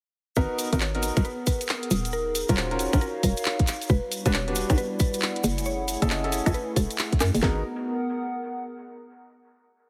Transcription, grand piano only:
0.37 0.67 B3 loud
0.37 0.67 D#4 medium
0.37 0.67 F#4 medium
0.37 0.67 A#4 loud
0.73 0.82 B3 loud
0.73 0.82 D#4 medium
0.73 0.82 F#4 medium
0.73 0.82 A#4 loud
0.95 1.13 B3 medium
0.95 1.13 D#4 medium
0.95 1.13 F#4 medium
0.95 1.13 A#4 medium
1.17 1.22 B3 medium
1.17 1.22 D#4 medium
1.17 1.22 F#4 medium
1.17 1.22 A#4 medium
2.49 2.68 C#4 medium
2.49 2.68 F4 medium
2.49 2.68 F#4 medium
2.49 2.68 A#4 loud
2.71 2.90 C#4 medium
2.71 2.90 F4 medium
2.71 2.90 F#4 medium
2.71 2.90 A#4 medium
2.93 3.03 C#4 medium
2.93 3.03 F4 medium
2.93 3.03 F#4 medium
2.93 3.03 A#4 medium
4.26 4.35 D4 loud
4.26 4.35 F#4 medium
4.26 4.35 G4 medium
4.26 4.35 B4 loud
4.48 4.66 D4 medium
4.48 4.66 F#4 medium
4.48 4.66 G4 medium
4.48 4.66 B4 medium
4.70 4.75 D4 medium
4.70 4.75 F#4 medium
4.70 4.75 G4 medium
4.70 4.75 B4 medium
6.02 6.21 C#4 medium
6.02 6.21 E4 medium
6.02 6.21 G#4 medium
6.02 6.21 A4 medium
6.24 6.43 C#4 medium
6.24 6.43 E4 medium
6.24 6.43 G#4 medium
6.24 6.43 A4 medium
6.46 6.56 C#4 medium
6.46 6.56 E4 medium
6.46 6.56 G#4 medium
6.46 6.56 A4 medium
7.42 7.60 B3 medium
7.42 7.60 D#4 medium
7.42 7.60 F#4 medium
7.42 7.60 A#4 medium

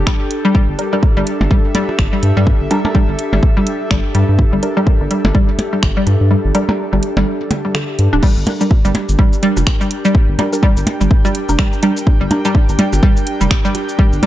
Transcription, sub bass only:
0.69 0.75 G1 loud
1.17 1.23 G1 medium
1.41 1.47 G1 loud
1.99 2.08 G1 medium
2.23 2.32 G2 medium
2.37 2.51 G2 medium
2.61 2.67 G1 loud
3.09 3.15 G1 loud
3.33 3.39 G1 loud
3.91 4.00 G1 medium
4.15 4.24 G2 medium
4.29 4.43 G2 medium
4.53 4.59 G1 loud
5.01 5.07 G1 medium
5.25 5.31 G1 loud
5.83 5.92 G1 medium
6.07 6.16 G2 medium
6.21 6.35 G2 medium
6.45 6.51 G1 loud
6.93 6.99 G1 medium
7.17 7.23 G1 loud
7.99 8.08 G2 medium
8.13 8.20 D1 loud
8.37 8.44 G1 loud
8.85 8.92 G1 loud
9.09 9.16 G1 loud
9.57 9.63 F1 medium
10.29 10.35 G1 loud
10.77 10.83 G1 loud
11.01 11.07 G1 loud
11.49 11.55 F1 medium
12.21 12.27 G1 loud
12.69 12.75 G1 loud
12.93 13.00 G1 loud
13.41 13.48 F1 medium
14.13 14.19 G1 loud

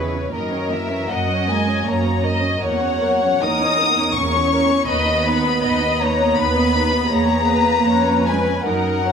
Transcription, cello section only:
0.00 0.34 C#3 soft
0.35 0.72 D#3 soft
0.72 1.11 E3 medium
1.12 1.50 F#3 medium
1.49 1.86 G#3 medium
1.86 2.23 A#3 medium
2.61 3.39 F#3 medium
3.42 4.17 D#4 medium
4.17 4.88 C#4 medium
4.89 6.02 B3 medium
6.03 6.39 A#3 medium
6.39 7.12 B3 medium
7.12 8.25 A#3 medium
8.27 8.66 G#3 medium
8.66 9.12 F#3 medium

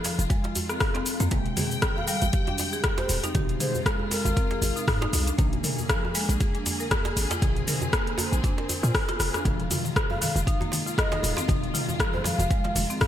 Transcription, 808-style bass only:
0.19 0.26 F1 loud
1.20 1.28 F2 medium
1.32 1.47 G#1 loud
1.46 1.53 D#1 medium
2.22 2.30 G#1 medium
3.10 3.19 D#1 medium
3.35 3.50 G#1 loud
3.49 3.57 D#1 medium
4.25 4.33 G#1 medium
4.62 4.72 G#1 loud
4.88 5.06 G#2 medium
5.13 5.31 C2 medium
5.39 5.54 A#1 loud
5.52 5.60 G#1 medium
6.29 6.37 A#1 medium
7.17 7.26 G#1 medium
7.42 7.57 A#1 loud
7.56 7.64 G#1 loud
8.32 8.40 A#1 medium
8.83 8.91 A#2 medium
9.20 9.29 F1 loud
9.45 9.61 F1 loud
9.59 9.67 D#1 loud
10.36 10.43 F1 loud
11.23 11.33 D#1 medium
11.49 11.64 F1 loud
11.63 11.71 D#1 medium
12.39 12.47 F1 medium
12.76 12.85 F1 loud
13.01 13.07 F2 loud

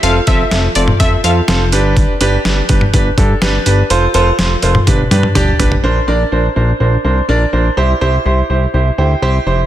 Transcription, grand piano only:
0.03 0.16 C4 loud
0.03 0.15 F4 loud
0.03 0.15 A4 loud
0.27 0.40 C4 loud
0.27 0.40 F4 loud
0.27 0.40 A4 loud
0.51 0.64 C4 medium
0.51 0.64 F4 medium
0.51 0.64 A4 medium
0.76 0.88 C4 medium
0.76 0.88 F4 medium
0.76 0.88 A4 medium
1.00 1.12 C4 medium
1.00 1.12 F4 medium
1.00 1.12 A4 loud
1.24 1.36 C4 medium
1.24 1.36 F4 medium
1.24 1.36 A4 medium
1.48 1.61 C4 loud
1.48 1.61 F4 loud
1.48 1.61 A4 loud
1.72 2.11 D4 medium
1.72 2.11 G4 medium
1.72 2.11 B4 loud
2.21 2.33 D4 loud
2.21 2.33 G4 loud
2.21 2.33 B4 loud
2.45 2.57 D4 medium
2.45 2.58 G4 medium
2.45 2.57 B4 loud
2.69 2.82 D4 medium
2.69 2.82 G4 medium
2.69 2.82 B4 loud
2.93 3.06 D4 medium
2.93 3.06 G4 medium
2.93 3.06 B4 medium
3.18 3.30 D4 medium
3.18 3.30 G4 medium
3.18 3.30 A4 loud
3.42 3.54 D4 loud
3.42 3.54 G4 loud
3.42 3.54 B4 loud
3.66 3.78 D4 medium
3.66 3.78 G4 medium
3.66 3.79 B4 loud
3.90 4.03 F4 loud
3.90 4.03 A4 medium
3.90 4.03 C5 loud
4.14 4.27 F4 loud
4.14 4.27 A4 loud
4.14 4.27 C5 loud
4.39 4.51 F4 medium
4.39 4.51 A4 medium
4.39 4.51 C5 loud
4.63 4.75 F4 medium
4.63 4.75 A4 medium
4.63 4.75 C5 medium
4.87 4.99 D4 medium
4.87 4.99 G4 medium
4.87 4.99 B4 medium
5.11 5.24 D4 medium
5.11 5.24 G4 medium
5.11 5.24 B4 medium
5.35 5.48 D4 loud
5.35 5.48 G4 loud
5.35 5.48 D5 loud
5.59 5.72 D4 medium
5.59 5.72 G4 medium
5.59 5.72 B4 loud
5.84 5.96 D4 loud
5.84 5.96 A#4 medium
5.84 5.96 C5 loud
6.08 6.20 D4 loud
6.08 6.20 A#4 medium
6.08 6.20 D5 loud
6.32 6.44 D4 medium
6.32 6.45 A#4 medium
6.32 6.45 C5 medium
6.56 6.69 D4 medium
6.56 6.69 A#4 medium
6.56 6.69 C5 medium
6.80 6.93 D4 medium
6.80 6.93 A#4 medium
6.80 6.93 C5 medium
7.04 7.17 D4 medium
7.04 7.17 A#4 medium
7.04 7.17 C5 medium
7.29 7.41 D4 loud
7.29 7.41 A#4 medium
7.29 7.41 D5 loud
7.53 7.65 D4 medium
7.53 7.65 A#4 medium
7.53 7.65 C5 medium
7.77 7.90 E4 medium
7.77 7.90 G4 medium
7.77 7.90 C5 loud
8.01 8.14 E4 loud
8.01 8.14 G4 medium
8.01 8.14 C5 loud
8.26 8.38 E4 medium
8.26 8.38 G4 medium
8.26 8.38 C5 medium
8.50 8.62 E4 medium
8.50 8.62 G4 medium
8.50 8.62 C5 medium
8.74 8.86 E4 medium
8.74 8.86 G4 medium
8.74 8.86 C5 medium
8.98 9.11 E4 medium
8.98 9.11 G4 medium
8.98 9.11 C5 medium
8.98 9.21 G5 medium
9.22 9.35 E4 loud
9.22 9.35 G4 medium
9.22 9.35 C5 loud
9.22 9.66 E5 medium
9.47 9.59 E4 medium
9.47 9.59 G4 medium
9.47 9.59 C5 medium

